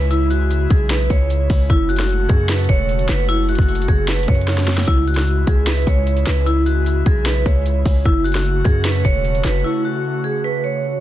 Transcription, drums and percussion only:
0.11 closed hi-hat medium
0.31 closed hi-hat medium
0.51 closed hi-hat medium
0.70 kick loud
0.70 closed hi-hat medium
0.90 snare loud
0.90 clap loud
0.90 closed hi-hat medium
1.10 kick medium
1.10 closed hi-hat medium
1.30 closed hi-hat medium
1.50 kick loud
1.50 open hi-hat medium
1.70 kick loud
1.70 closed hi-hat medium
1.90 closed hi-hat medium
1.96 snare medium
1.96 closed hi-hat medium
2.03 closed hi-hat medium
2.09 closed hi-hat medium
2.29 kick loud
2.29 closed hi-hat medium
2.49 snare loud
2.49 clap medium
2.49 closed hi-hat soft
2.54 closed hi-hat medium
2.59 closed hi-hat medium
2.64 closed hi-hat medium
2.69 kick medium
2.69 closed hi-hat medium
2.89 closed hi-hat medium
2.99 closed hi-hat medium
3.09 snare loud
3.09 clap medium
3.09 closed hi-hat medium
3.29 closed hi-hat medium
3.49 closed hi-hat soft
3.55 kick medium
3.55 closed hi-hat medium
3.62 closed hi-hat medium
3.68 closed hi-hat medium
3.75 closed hi-hat medium
3.82 closed hi-hat medium
3.88 kick loud
3.88 closed hi-hat medium
4.08 snare loud
4.08 clap medium
4.08 closed hi-hat medium
4.13 closed hi-hat medium
4.18 closed hi-hat medium
4.23 closed hi-hat medium
4.28 kick medium
4.28 closed hi-hat soft
4.35 closed hi-hat medium
4.41 closed hi-hat medium
4.48 snare medium
4.48 closed hi-hat medium
4.58 snare medium
4.68 snare loud
4.68 open hi-hat medium
4.78 snare loud
4.88 kick loud
4.88 closed hi-hat medium
5.08 closed hi-hat medium
5.14 snare medium
5.14 closed hi-hat medium
5.21 closed hi-hat medium
5.27 closed hi-hat medium
5.47 kick loud
5.47 closed hi-hat medium
5.67 snare loud
5.67 clap medium
5.67 closed hi-hat soft
5.72 closed hi-hat medium
5.77 closed hi-hat medium
5.82 closed hi-hat medium
5.87 kick medium
5.87 closed hi-hat medium
6.07 closed hi-hat medium
6.17 closed hi-hat medium
6.27 snare loud
6.27 clap medium
6.27 closed hi-hat medium
6.46 closed hi-hat medium
6.66 closed hi-hat medium
6.86 closed hi-hat medium
7.06 kick loud
7.06 closed hi-hat medium
7.26 snare loud
7.26 clap loud
7.26 closed hi-hat medium
7.46 kick medium
7.46 closed hi-hat medium
7.66 closed hi-hat medium
7.86 kick loud
7.86 open hi-hat medium
8.05 kick loud
8.05 closed hi-hat medium
8.25 closed hi-hat medium
8.32 snare medium
8.32 closed hi-hat medium
8.39 closed hi-hat medium
8.45 closed hi-hat medium
8.65 kick loud
8.65 closed hi-hat medium
8.85 snare loud
8.85 clap medium
8.85 closed hi-hat soft
8.90 closed hi-hat medium
8.95 closed hi-hat medium
9.00 closed hi-hat medium
9.05 kick medium
9.05 closed hi-hat medium
9.25 closed hi-hat medium
9.35 closed hi-hat medium
9.45 snare loud
9.45 clap medium
9.45 closed hi-hat medium

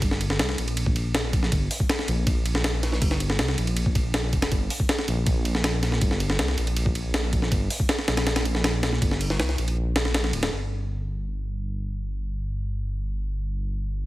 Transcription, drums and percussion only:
0.02 kick loud
0.02 ride medium
0.11 snare soft
0.21 ride medium
0.30 snare medium
0.39 snare loud
0.39 ride medium
0.49 snare medium
0.58 ride medium
0.68 ride soft
0.77 ride medium
0.86 kick loud
0.96 ride medium
1.15 snare loud
1.15 ride medium
1.33 kick loud
1.33 ride medium
1.43 snare soft
1.52 kick loud
1.52 ride medium
1.71 open hi-hat medium
1.80 kick medium
1.90 snare loud
1.90 ride medium
1.99 snare medium
2.08 ride medium
2.27 kick loud
2.27 ride medium
2.46 ride medium
2.55 snare medium
2.64 snare loud
2.64 ride medium
2.83 snare soft
2.83 ride medium
2.92 snare soft
3.02 kick loud
3.02 ride medium
3.11 snare soft
3.20 ride medium
3.30 snare medium
3.39 snare loud
3.39 ride medium
3.48 snare medium
3.58 ride medium
3.67 ride soft
3.77 ride medium
3.86 kick loud
3.95 kick loud
3.95 ride medium
4.14 snare loud
4.14 ride medium
4.33 kick medium
4.33 ride medium
4.42 snare loud
4.42 ride medium
4.52 kick loud
4.52 ride medium
4.70 open hi-hat medium
4.80 kick medium
4.89 snare loud
4.89 ride medium
4.99 snare medium
5.08 ride medium
5.26 kick loud
5.26 ride medium
5.45 ride medium
5.55 snare medium
5.64 snare loud
5.64 ride medium
5.83 snare soft
5.83 ride medium
5.92 snare soft
6.01 kick loud
6.01 ride medium
6.11 snare soft
6.20 ride medium
6.30 snare medium
6.39 snare loud
6.39 ride medium
6.48 snare medium
6.58 ride medium
6.67 ride soft
6.77 ride medium
6.86 kick loud
6.95 ride medium
7.14 snare loud
7.14 ride medium
7.33 kick loud
7.33 ride medium
7.42 snare soft
7.52 kick loud
7.52 ride medium
7.70 open hi-hat medium
7.80 kick loud
7.89 snare loud
7.89 ride medium
7.99 snare medium
8.08 snare loud
8.08 ride medium
8.17 snare loud
8.17 ride medium
8.27 snare loud
8.27 ride medium
8.36 snare loud
8.36 ride medium
8.45 ride medium
8.55 snare medium
8.64 snare loud
8.64 ride medium
8.83 snare loud
8.83 ride medium
8.93 snare soft
9.02 kick loud
9.02 ride medium
9.11 snare soft
9.21 ride medium
9.30 snare medium
9.40 snare loud
9.40 ride medium
9.49 snare medium
9.58 ride medium
9.68 ride soft
9.96 snare loud
9.96 ride medium
10.05 snare soft
10.14 snare loud
10.14 ride medium
10.24 snare soft
10.33 ride medium
10.43 snare loud
10.43 ride medium

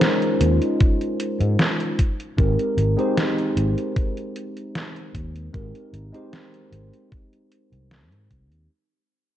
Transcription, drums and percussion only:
0.01 snare loud
0.01 closed hi-hat medium
0.22 closed hi-hat soft
0.41 closed hi-hat loud
0.62 closed hi-hat soft
0.80 kick loud
0.80 closed hi-hat medium
1.01 closed hi-hat soft
1.20 closed hi-hat medium
1.41 closed hi-hat soft
1.59 snare loud
1.59 closed hi-hat medium
1.80 closed hi-hat soft
1.99 kick medium
1.99 closed hi-hat medium
2.20 closed hi-hat soft
2.38 kick loud
2.38 closed hi-hat medium
2.59 closed hi-hat soft
2.78 closed hi-hat medium
2.99 closed hi-hat soft
3.17 snare loud
3.17 closed hi-hat medium
3.38 closed hi-hat soft
3.57 closed hi-hat medium
3.78 closed hi-hat soft
3.96 kick loud
3.96 closed hi-hat medium
4.17 closed hi-hat soft
4.36 closed hi-hat medium
4.57 closed hi-hat soft
4.75 snare loud
4.75 closed hi-hat medium
4.96 closed hi-hat soft
5.15 kick medium
5.15 closed hi-hat medium
5.36 closed hi-hat soft
5.54 kick loud
5.54 closed hi-hat medium
5.75 closed hi-hat soft
5.94 closed hi-hat medium
6.14 closed hi-hat soft
6.33 snare loud
6.33 closed hi-hat medium
6.54 closed hi-hat soft
6.73 closed hi-hat medium
6.93 closed hi-hat soft
7.12 kick loud
7.12 closed hi-hat medium
7.33 closed hi-hat soft
7.52 closed hi-hat medium
7.73 closed hi-hat soft
7.91 snare loud
7.91 closed hi-hat medium
8.12 closed hi-hat soft
8.30 kick medium
8.30 closed hi-hat medium
8.52 closed hi-hat soft

